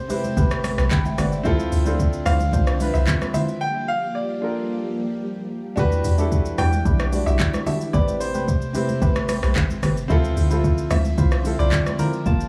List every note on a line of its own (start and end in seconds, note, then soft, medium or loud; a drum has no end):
0.00 1.43 C3 medium
0.00 1.43 A3 medium
0.00 1.43 C4 medium
0.00 1.43 G4 medium
0.00 0.60 C5 medium
0.08 0.96 C4 medium
0.08 0.23 C4 medium
0.08 0.96 E4 medium
0.08 0.24 G4 medium
0.08 0.97 G4 medium
0.08 0.24 B4 medium
0.08 0.92 C5 medium
0.08 open hi-hat soft
0.08 high conga medium
0.08 shaker medium
0.24 high conga medium
0.24 shaker medium
0.37 0.74 A1 loud
0.37 0.75 C4 loud
0.37 0.75 G4 medium
0.37 0.75 B4 loud
0.37 kick loud
0.37 low conga medium
0.37 shaker medium
0.51 cross-stick loud
0.51 shaker medium
0.64 cross-stick loud
0.64 open hi-hat medium
0.64 high conga medium
0.64 shaker medium
0.78 0.90 B1 medium
0.78 0.91 C4 medium
0.78 0.91 G4 medium
0.78 0.91 B4 medium
0.78 cross-stick loud
0.78 shaker soft
0.91 1.15 A1 loud
0.91 1.04 G5 medium
0.91 1.04 B5 medium
0.91 kick loud
0.91 clap loud
0.91 low conga medium
0.91 shaker medium
1.05 1.18 E5 medium
1.05 1.18 G5 medium
1.05 high conga medium
1.05 shaker medium
1.18 1.47 G1 medium
1.18 1.32 C4 medium
1.18 1.32 G4 medium
1.18 1.32 B4 medium
1.18 1.32 D5 medium
1.18 1.31 F#5 medium
1.18 cross-stick medium
1.18 open hi-hat soft
1.18 high conga medium
1.18 low conga medium
1.18 shaker medium
1.32 1.58 C5 medium
1.32 1.58 E5 medium
1.32 shaker medium
1.43 1.69 D2 loud
1.43 3.59 D3 medium
1.43 3.59 F3 medium
1.43 1.77 C4 loud
1.43 3.59 C4 medium
1.43 3.59 D4 medium
1.43 1.77 E4 loud
1.43 1.83 E4 loud
1.43 1.83 F4 medium
1.43 1.78 F4 loud
1.43 1.79 A4 loud
1.43 1.83 C5 loud
1.43 kick loud
1.43 low conga medium
1.43 shaker medium
1.59 high conga medium
1.59 shaker medium
1.72 2.21 D2 loud
1.72 open hi-hat medium
1.72 shaker medium
1.84 2.61 C4 medium
1.84 2.61 D4 medium
1.84 1.99 E4 medium
1.84 1.99 F4 medium
1.84 2.62 F4 medium
1.84 2.62 A4 loud
1.84 1.99 C5 medium
1.84 high conga medium
1.84 shaker medium
1.99 kick medium
1.99 shaker medium
2.13 shaker medium
2.26 2.50 D2 loud
2.26 2.40 E4 medium
2.26 2.40 F4 medium
2.26 2.40 C5 medium
2.26 2.96 F5 loud
2.26 cross-stick medium
2.26 open hi-hat soft
2.26 high conga medium
2.26 shaker medium
2.40 high conga medium
2.40 shaker medium
2.53 2.90 C2 loud
2.53 2.91 D4 loud
2.53 2.91 F4 medium
2.53 2.91 C5 loud
2.53 kick loud
2.53 low conga medium
2.53 shaker medium
2.67 cross-stick medium
2.67 shaker medium
2.79 3.60 C4 medium
2.79 3.61 E4 medium
2.79 3.62 F4 medium
2.79 3.62 B4 medium
2.79 open hi-hat medium
2.79 high conga medium
2.79 shaker medium
2.94 3.06 C2 medium
2.94 3.07 E4 medium
2.94 3.07 F4 medium
2.94 3.07 C5 medium
2.94 3.33 E5 loud
2.94 shaker medium
3.07 kick medium
3.07 clap loud
3.07 low conga medium
3.07 shaker medium
3.21 cross-stick medium
3.21 high conga medium
3.21 shaker medium
3.34 3.48 E4 medium
3.34 3.48 F4 medium
3.34 3.48 C5 medium
3.34 3.62 E5 loud
3.34 open hi-hat soft
3.34 high conga medium
3.34 low conga medium
3.34 shaker medium
3.48 shaker medium
3.61 5.75 F3 medium
3.61 5.75 G3 medium
3.61 5.75 A#3 medium
3.61 5.75 G4 medium
3.61 3.89 G5 loud
3.88 4.16 F5 loud
4.15 5.19 D5 medium
4.41 5.28 D4 medium
4.41 5.29 F4 medium
4.41 5.29 A4 medium
4.41 5.30 A#4 medium
5.76 6.02 E2 loud
5.76 7.92 E3 medium
5.76 7.91 G3 medium
5.76 6.09 D4 loud
5.76 6.15 D4 medium
5.76 7.92 D4 medium
5.76 7.92 E4 medium
5.76 6.10 F#4 loud
5.76 6.15 F#4 medium
5.76 6.15 G4 loud
5.76 6.10 G4 loud
5.76 6.11 B4 loud
5.76 kick loud
5.76 low conga medium
5.76 shaker medium
5.92 high conga medium
5.92 shaker medium
6.04 6.53 E2 loud
6.04 open hi-hat medium
6.04 shaker medium
6.17 6.93 D4 medium
6.17 6.31 D4 medium
6.17 6.94 E4 medium
6.17 6.31 F#4 medium
6.17 6.31 G4 medium
6.17 6.94 G4 medium
6.17 6.95 A4 loud
6.17 high conga medium
6.17 shaker medium
6.32 kick medium
6.32 shaker medium
6.46 shaker medium
6.58 6.83 E2 loud
6.58 6.72 D4 medium
6.58 6.72 F#4 medium
6.58 6.72 G4 medium
6.58 7.29 G5 loud
6.58 cross-stick medium
6.58 open hi-hat soft
6.58 high conga medium
6.58 shaker medium
6.72 high conga medium
6.72 shaker medium
6.85 7.22 B1 loud
6.85 7.23 D4 loud
6.85 7.23 E4 medium
6.85 7.23 G4 loud
6.85 kick loud
6.85 low conga medium
6.85 shaker medium
6.99 cross-stick loud
6.99 shaker medium
7.11 7.93 D4 medium
7.11 7.94 F#4 medium
7.11 7.94 G4 medium
7.11 7.95 D5 medium
7.11 open hi-hat medium
7.11 high conga medium
7.11 shaker medium
7.26 7.38 B1 medium
7.26 7.39 D4 medium
7.26 7.39 F#4 medium
7.26 7.39 G4 medium
7.26 7.65 E5 loud
7.26 shaker medium
7.39 kick medium
7.39 clap loud
7.39 low conga medium
7.39 shaker medium
7.54 cross-stick medium
7.54 high conga medium
7.54 shaker medium
7.66 7.80 D4 medium
7.66 7.80 F#4 medium
7.66 7.81 G4 medium
7.66 7.94 E5 medium
7.66 open hi-hat soft
7.66 high conga medium
7.66 low conga medium
7.66 shaker medium
7.81 shaker medium
7.93 8.71 A1 loud
7.93 10.08 C3 medium
7.93 10.08 A3 medium
7.93 8.31 C4 loud
7.93 10.08 C4 medium
7.93 10.08 G4 medium
7.93 8.31 G4 medium
7.93 8.32 B4 loud
7.93 8.21 D5 loud
7.93 kick loud
7.93 low conga medium
7.93 shaker medium
8.08 high conga medium
8.08 shaker medium
8.20 9.25 C5 medium
8.20 open hi-hat medium
8.20 shaker medium
8.34 8.47 C4 medium
8.34 8.47 G4 medium
8.34 8.48 B4 medium
8.34 high conga medium
8.34 shaker medium
8.48 kick medium
8.48 shaker medium
8.62 shaker medium
8.73 9.61 C4 medium
8.73 8.88 C4 medium
8.73 9.61 E4 medium
8.73 8.88 G4 medium
8.73 9.62 G4 medium
8.73 8.89 B4 medium
8.73 9.62 C5 medium
8.73 open hi-hat soft
8.73 high conga medium
8.73 shaker medium
8.89 high conga medium
8.89 shaker medium
9.02 9.39 A1 loud
9.02 9.39 C4 medium
9.02 9.40 G4 medium
9.02 9.40 B4 loud
9.02 kick loud
9.02 low conga medium
9.02 shaker medium
9.16 cross-stick loud
9.16 shaker medium
9.29 cross-stick loud
9.29 open hi-hat medium
9.29 high conga medium
9.29 shaker medium
9.43 9.55 B1 medium
9.43 9.55 C4 medium
9.43 9.56 G4 medium
9.43 9.56 B4 medium
9.43 cross-stick loud
9.43 shaker medium
9.56 9.80 A1 loud
9.56 kick medium
9.56 clap loud
9.56 low conga medium
9.56 shaker medium
9.70 high conga medium
9.70 shaker medium
9.83 10.07 G1 medium
9.83 9.96 C4 medium
9.83 9.97 G4 medium
9.83 9.97 B4 medium
9.83 cross-stick loud
9.83 open hi-hat soft
9.83 high conga medium
9.83 low conga medium
9.83 shaker medium
9.97 shaker medium
10.08 10.34 D2 loud
10.08 12.24 D3 medium
10.08 12.48 F3 medium
10.08 10.42 C4 loud
10.08 12.24 C4 medium
10.08 10.42 E4 loud
10.08 10.47 E4 loud
10.08 10.48 F4 medium
10.08 10.43 F4 loud
10.08 10.43 A4 loud
10.08 10.48 C5 loud
10.08 12.24 E5 medium
10.08 kick loud
10.08 low conga medium
10.08 shaker medium
10.24 high conga medium
10.24 shaker medium
10.37 10.85 D2 loud
10.37 open hi-hat medium
10.37 shaker medium
10.49 11.26 C4 medium
10.49 11.26 E4 medium
10.49 10.63 E4 medium
10.49 10.64 F4 medium
10.49 11.27 F4 medium
10.49 11.27 A4 loud
10.49 10.64 C5 medium
10.49 high conga medium
10.49 shaker medium
10.64 kick medium
10.64 shaker medium
10.78 shaker medium
10.91 11.15 D2 loud
10.91 11.04 E4 medium
10.91 11.05 F4 medium
10.91 11.05 C5 medium
10.91 11.61 E5 loud
10.91 cross-stick medium
10.91 open hi-hat soft
10.91 high conga medium
10.91 shaker medium
11.05 high conga medium
11.05 shaker medium
11.18 11.55 C2 medium
11.18 11.56 E4 loud
11.18 11.56 F4 medium
11.18 11.56 C5 loud
11.18 kick loud
11.18 low conga medium
11.18 shaker medium
11.32 cross-stick medium
11.32 shaker medium
11.43 12.25 C4 medium
11.43 12.26 E4 medium
11.43 12.26 F4 medium
11.43 12.27 A4 medium
11.43 open hi-hat medium
11.43 high conga medium
11.43 shaker medium
11.59 11.71 C2 medium
11.59 11.72 E4 medium
11.59 11.72 F4 medium
11.59 11.72 C5 medium
11.59 12.00 D5 loud
11.59 shaker soft
11.72 kick medium
11.72 clap loud
11.72 low conga medium
11.72 shaker medium
11.86 cross-stick medium
11.86 high conga medium
11.86 shaker medium
11.99 12.13 E4 medium
11.99 12.13 F4 medium
11.99 12.48 A#4 medium
11.99 12.13 C5 medium
11.99 open hi-hat soft
11.99 high conga medium
11.99 low conga medium
11.99 shaker medium
12.13 shaker medium
12.26 12.48 G1 loud
12.26 12.48 G3 medium
12.26 12.48 A#3 medium
12.26 12.48 F4 medium
12.26 12.48 G4 medium
12.26 12.48 A5 loud
12.26 kick loud
12.26 low conga medium
12.26 shaker medium
12.40 shaker medium